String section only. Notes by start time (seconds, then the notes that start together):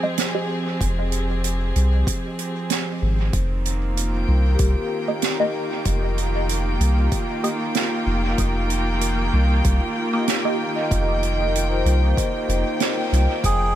Already playing: F3 C4 G4 G#4
3.34 D#3
3.64 A#3
3.90 F4
4.09 G5
13.45 F3